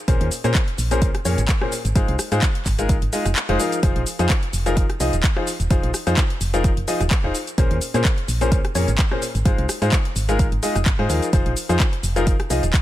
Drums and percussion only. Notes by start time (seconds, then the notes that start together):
0.08 kick, closed hi-hat, shaker
0.21 closed hi-hat
0.31 open hi-hat, shaker
0.44 closed hi-hat, shaker
0.55 kick, clap, closed hi-hat, shaker
0.68 closed hi-hat
0.78 open hi-hat, shaker
0.91 closed hi-hat, shaker
1.02 kick, closed hi-hat, shaker
1.15 cross-stick, closed hi-hat
1.25 open hi-hat, shaker
1.38 closed hi-hat, shaker
1.48 kick, clap, closed hi-hat, shaker
1.61 cross-stick
1.72 open hi-hat, shaker
1.85 closed hi-hat, shaker
1.95 kick, closed hi-hat, shaker
2.08 closed hi-hat
2.19 cross-stick, open hi-hat, shaker
2.32 closed hi-hat, shaker
2.42 kick, clap, closed hi-hat, shaker
2.55 closed hi-hat
2.65 kick, clap, open hi-hat, shaker
2.79 closed hi-hat, shaker
2.89 kick, closed hi-hat, shaker
3.02 closed hi-hat
3.13 open hi-hat, shaker
3.26 cross-stick, closed hi-hat, shaker
3.36 clap, closed hi-hat, shaker
3.49 closed hi-hat
3.60 open hi-hat, shaker
3.72 closed hi-hat, shaker
3.83 kick, closed hi-hat, shaker
3.96 closed hi-hat
4.06 open hi-hat, shaker
4.19 closed hi-hat, shaker
4.30 kick, clap, closed hi-hat, shaker
4.43 closed hi-hat
4.53 open hi-hat, shaker
4.66 closed hi-hat, shaker
4.77 kick, closed hi-hat, shaker
4.90 cross-stick, closed hi-hat
5.00 open hi-hat, shaker
5.13 closed hi-hat, shaker
5.23 kick, clap, closed hi-hat, shaker
5.37 cross-stick
5.47 open hi-hat, shaker
5.60 closed hi-hat, shaker
5.70 kick, closed hi-hat, shaker
5.83 closed hi-hat
5.94 cross-stick, open hi-hat, shaker
6.07 closed hi-hat, shaker
6.17 kick, clap, closed hi-hat, shaker
6.30 closed hi-hat
6.41 open hi-hat, shaker
6.54 closed hi-hat, shaker
6.64 kick, closed hi-hat, shaker
6.77 closed hi-hat
6.88 open hi-hat, shaker
7.01 cross-stick, closed hi-hat, shaker
7.11 kick, clap, closed hi-hat, shaker
7.35 open hi-hat, shaker
7.47 closed hi-hat, shaker
7.58 kick, closed hi-hat, shaker
7.71 closed hi-hat
7.81 open hi-hat, shaker
7.94 closed hi-hat, shaker
8.05 kick, clap, closed hi-hat, shaker
8.18 closed hi-hat
8.28 open hi-hat, shaker
8.41 closed hi-hat, shaker
8.52 kick, closed hi-hat, shaker
8.65 cross-stick, closed hi-hat
8.75 open hi-hat, shaker
8.88 closed hi-hat, shaker
8.98 kick, clap, closed hi-hat, shaker
9.12 cross-stick
9.22 open hi-hat, shaker
9.35 closed hi-hat, shaker
9.45 kick, closed hi-hat, shaker
9.58 closed hi-hat
9.69 cross-stick, open hi-hat, shaker
9.82 closed hi-hat, shaker
9.92 kick, clap, closed hi-hat, shaker
10.05 closed hi-hat
10.16 open hi-hat, shaker
10.29 closed hi-hat, shaker
10.39 kick, closed hi-hat, shaker
10.52 closed hi-hat
10.63 open hi-hat, shaker
10.76 cross-stick, closed hi-hat, shaker
10.86 kick, clap, closed hi-hat, shaker
11.10 open hi-hat, shaker
11.22 closed hi-hat, shaker
11.33 kick, closed hi-hat, shaker
11.46 closed hi-hat
11.57 open hi-hat, shaker
11.69 closed hi-hat, shaker
11.80 kick, clap, closed hi-hat, shaker
11.93 closed hi-hat
12.03 open hi-hat, shaker
12.16 closed hi-hat, shaker
12.27 kick, closed hi-hat, shaker
12.40 cross-stick, closed hi-hat
12.50 open hi-hat, shaker
12.63 closed hi-hat, shaker
12.73 kick, clap, closed hi-hat, shaker